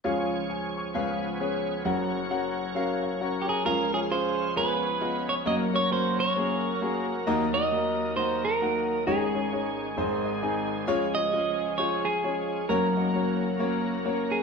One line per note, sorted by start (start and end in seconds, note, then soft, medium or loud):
0.04 0.91 C#2 medium
0.04 0.91 C#3 medium
0.04 1.83 F3 medium
0.04 0.94 C#4 medium
0.04 0.35 C#4 medium
0.04 0.36 F4 medium
0.04 1.83 G#4 medium
0.04 0.36 G#4 medium
0.04 0.93 C#5 medium
0.04 0.36 F5 medium
0.50 0.76 G#5 medium
0.77 1.20 C#6 medium
0.94 1.81 C#2 medium
0.94 1.81 C#3 medium
0.94 1.84 B3 medium
0.94 1.26 C#4 medium
0.94 1.26 G#4 medium
0.94 1.26 B4 medium
0.94 3.62 C#5 medium
0.94 1.26 F5 medium
1.40 1.71 C#4 medium
1.40 1.71 G#4 medium
1.40 1.71 B4 medium
1.40 1.72 C#5 medium
1.84 3.62 F#1 medium
1.84 3.62 F#2 medium
1.84 3.64 F#3 medium
1.84 3.64 C#4 medium
1.84 2.16 C#4 medium
1.84 2.16 F#4 medium
1.84 3.63 A#4 medium
1.84 2.16 A#4 medium
1.84 2.16 F#5 medium
2.30 2.61 C#4 medium
2.30 2.61 F#4 medium
2.30 2.62 A#4 medium
2.30 2.62 F#5 medium
2.75 3.06 C#4 medium
2.75 3.06 F#4 medium
2.75 3.07 A#4 medium
2.75 3.01 F5 medium
3.03 3.19 F5 medium
3.20 3.52 C#4 medium
3.20 3.52 F#4 medium
3.20 3.52 A#4 medium
3.20 3.52 C#5 medium
3.20 3.46 F#5 medium
3.42 3.48 G4 soft
3.48 3.65 G#4 medium
3.48 3.65 A#5 medium
3.65 4.52 C#2 medium
3.65 4.52 C#3 medium
3.65 5.44 F3 medium
3.65 4.55 G#3 medium
3.65 4.54 C#4 medium
3.65 7.23 C#4 medium
3.65 3.82 C#4 medium
3.65 3.82 F4 medium
3.65 5.44 F4 medium
3.65 4.54 G#4 medium
3.65 5.44 G#4 medium
3.65 3.82 G#4 medium
3.65 3.91 A#4 medium
3.65 4.55 F5 medium
3.65 3.82 F5 medium
3.93 4.04 C#4 medium
3.93 4.04 F4 medium
3.93 4.04 G#4 soft
3.93 3.99 G#4 medium
3.93 4.04 C#5 medium
4.10 4.42 C#4 medium
4.10 4.42 F4 medium
4.10 4.42 G#4 medium
4.10 4.57 C5 medium
4.10 4.42 F5 medium
4.55 5.42 C#2 medium
4.55 5.42 C#3 medium
4.55 5.45 B3 medium
4.55 4.87 B3 medium
4.55 7.24 C#4 medium
4.55 4.87 F4 medium
4.55 5.45 G#4 medium
4.55 4.87 G#4 medium
4.55 5.45 B4 medium
4.55 5.29 B4 medium
4.55 4.87 C#5 medium
5.01 5.32 B3 medium
5.01 5.32 F4 medium
5.01 5.32 G#4 medium
5.01 5.33 D#5 medium
5.29 5.34 C#5 medium
5.45 7.23 F#1 medium
5.45 7.22 F#2 medium
5.45 9.03 F#3 medium
5.45 5.62 A#3 medium
5.45 9.04 A#3 medium
5.45 5.63 C#4 medium
5.45 9.04 F#4 medium
5.45 5.63 F#4 medium
5.45 9.04 A#4 medium
5.45 7.25 A#4 medium
5.45 5.63 C#5 loud
5.45 5.55 D#5 loud
5.73 5.84 A#3 medium
5.73 5.84 C#4 medium
5.73 5.84 F#4 medium
5.73 5.84 C#5 medium
5.73 5.91 C#5 loud
5.91 6.22 A#3 medium
5.91 6.23 C#4 medium
5.91 6.23 F#4 medium
5.91 6.20 C5 medium
5.91 6.23 C#5 medium
6.20 7.06 C#5 medium
6.36 6.68 A#3 medium
6.36 6.68 C#4 medium
6.36 6.68 F#4 medium
6.36 6.68 G#4 medium
6.81 7.13 A#3 medium
6.81 7.13 C#4 medium
6.81 7.13 F#4 medium
6.81 7.13 G#4 medium
7.27 9.04 D#2 medium
7.27 9.04 D#3 medium
7.27 7.43 A#3 loud
7.27 9.06 D#4 medium
7.27 7.43 D#4 medium
7.27 10.85 D#4 medium
7.27 7.44 F#4 medium
7.27 9.06 A#4 medium
7.27 7.44 D#5 loud
7.54 7.65 A#3 medium
7.54 7.65 D#4 medium
7.54 7.65 F#4 medium
7.54 8.16 D#5 loud
7.54 7.65 D#5 medium
7.72 8.03 A#3 medium
7.72 8.03 D#4 medium
7.72 8.03 F#4 medium
7.72 8.03 A#4 medium
8.16 8.48 A#3 medium
8.16 8.48 D#4 medium
8.16 8.49 F#4 medium
8.16 8.42 C5 medium
8.16 8.49 D#5 medium
8.45 9.07 A#4 loud
8.61 8.93 A#3 medium
8.61 8.93 D#4 medium
8.61 8.94 F#4 medium
8.61 8.94 F#5 medium
9.07 9.94 G#1 medium
9.07 9.94 G#2 medium
9.07 9.96 D#3 medium
9.07 9.97 G#3 medium
9.07 9.24 G#3 medium
9.07 12.65 G#3 medium
9.07 9.97 C#4 medium
9.07 9.24 C#4 medium
9.07 9.97 C#4 medium
9.07 9.24 D#4 medium
9.07 9.96 G#4 medium
9.07 9.76 G#4 medium
9.07 12.65 G#4 medium
9.07 9.24 C#5 medium
9.35 9.45 G#3 medium
9.35 9.45 C#4 medium
9.35 9.46 D#4 medium
9.35 9.46 C#5 medium
9.52 9.84 G#3 medium
9.52 9.84 C#4 medium
9.52 9.84 D#4 medium
9.52 9.84 C#5 medium
9.97 10.84 G#1 medium
9.97 10.84 G#2 medium
9.97 10.87 D#3 medium
9.97 10.29 G#3 medium
9.97 12.66 G#3 medium
9.97 10.87 C4 medium
9.97 10.29 C4 medium
9.97 10.87 C4 medium
9.97 10.29 D#4 medium
9.97 12.66 G#4 medium
9.97 10.29 C5 medium
10.25 10.42 D#5 medium
10.42 10.74 G#3 medium
10.42 10.74 C4 medium
10.42 10.74 D#4 medium
10.42 10.74 G#4 medium
10.42 10.85 G#5 medium
10.87 12.65 C#2 medium
10.87 12.65 C#3 medium
10.87 12.67 F3 medium
10.87 11.04 G#3 loud
10.87 14.43 C#4 medium
10.87 11.05 C#4 medium
10.87 12.67 F4 medium
10.87 11.05 F4 loud
10.87 11.05 C#5 loud
11.15 11.26 G#3 medium
11.15 11.26 C#4 medium
11.15 11.26 F4 soft
11.15 11.26 C#5 medium
11.15 11.74 D#5 loud
11.33 11.64 G#3 medium
11.33 11.64 C#4 medium
11.33 11.65 F4 medium
11.33 11.65 D#5 medium
11.78 12.10 G#3 medium
11.78 12.10 C#4 medium
11.78 12.10 F4 medium
11.78 12.10 C5 medium
11.78 12.06 C#5 medium
12.05 12.64 G#4 medium
12.24 12.55 G#3 medium
12.24 12.55 C#4 medium
12.24 12.55 F4 medium
12.24 12.55 C#5 medium
12.69 14.43 F#1 medium
12.69 14.43 F#2 medium
12.69 14.43 F#3 medium
12.69 14.43 A#3 medium
12.69 12.86 A#3 medium
12.69 14.43 A#3 medium
12.69 12.86 C#4 medium
12.69 14.43 F#4 medium
12.69 12.86 F#4 medium
12.69 14.43 A#4 medium
12.69 13.38 A#4 medium
12.69 14.43 A#4 medium
12.69 12.86 C#5 loud
12.96 13.07 A#3 medium
12.96 13.07 C#4 medium
12.96 13.07 F#4 medium
12.96 13.07 D#5 medium
13.14 13.45 A#3 medium
13.14 13.46 C#4 medium
13.14 13.46 F#4 medium
13.14 13.46 C#5 medium
13.59 13.91 A#3 medium
13.59 13.91 C#4 medium
13.59 13.91 F#4 medium
13.59 13.91 C#5 medium
14.05 14.36 A#3 medium
14.05 14.36 C#4 medium
14.05 14.36 F#4 medium
14.05 14.36 C#5 medium
14.32 14.43 G#4 medium